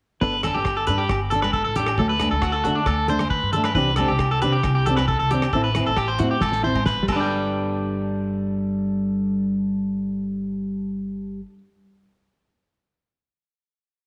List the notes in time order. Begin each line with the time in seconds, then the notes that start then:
0.21 G1 B3 D4 A4 B4, kick
0.43 D4 A4, cross-stick, closed hi-hat, high conga, low conga, low agogo
0.54 G1 G4
0.65 kick, cross-stick, low agogo
0.77 A4
0.87 G2 D4 A4 B4, closed hi-hat, low conga
0.98 G4
1.09 G1, kick, cross-stick, low agogo
1.30 A4, closed hi-hat, low conga
1.35 D4
1.42 B4, cross-stick, high conga, low agogo
1.53 A4, kick
1.64 A1 A4
1.76 D4 G4 A4, closed hi-hat, low conga
1.87 cross-stick, low agogo
1.98 D2 F#3 A3 A4, muted clean electric guitar stroke, kick
2.09 B4
2.20 A3 D4 A4, cross-stick, closed hi-hat, high conga, low conga, low agogo
2.31 D2 A4
2.42 F#4, kick, cross-stick, low agogo
2.52 A4
2.64 D3 D4 F#4 A4, closed hi-hat, low conga
2.68 A3
2.75 D4
2.86 D2 A4, kick, cross-stick, low agogo
3.08 A3 D4 A4 C5, closed hi-hat, low conga
3.19 cross-stick, high conga, low agogo
3.30 B4, kick
3.43 G2
3.53 D4 A4, closed hi-hat, low conga
3.58 A3
3.64 B4, cross-stick, low agogo
3.75 C2 E3 C4 D4 G4 B4, kick
3.96 D4 G4 A4, cross-stick, closed hi-hat, high conga, low conga, low agogo
4.00 C4
4.08 C2 G4
4.19 kick, cross-stick, low agogo
4.31 A4
4.42 C3 C4 D4 G4 B4, closed hi-hat, low conga
4.52 G4
4.63 C2, kick, cross-stick, low agogo
4.75 G4
4.86 D4 G4 A4, closed hi-hat, low conga
4.90 C4
4.96 B4, cross-stick, high conga, low agogo
5.08 A4, kick
5.19 C2 A4
5.31 C4 D4 G4, closed hi-hat, low conga
5.42 cross-stick, low agogo
5.53 A1 C4 E4 A4, muted clean electric guitar stroke, kick
5.64 B4
5.75 E4, cross-stick, closed hi-hat, high conga, low conga, low agogo
5.80 C4
5.86 A1 A4
5.97 G4, kick, cross-stick, low agogo
6.08 C5
6.19 A2 E4 F#4, closed hi-hat, low conga
6.23 C4
6.31 G4
6.41 A1 A4, kick, snare, high conga, low agogo
6.52 snare
6.63 C4 E4 C5, low conga
6.75 kick, high conga, low agogo
6.86 B4, kick, snare
6.97 A1
7.03 G3
7.08 G1 A4, muted clean electric guitar stroke, kick, crash, high conga, low agogo
7.12 D4 B4 D5
7.20 A4 G5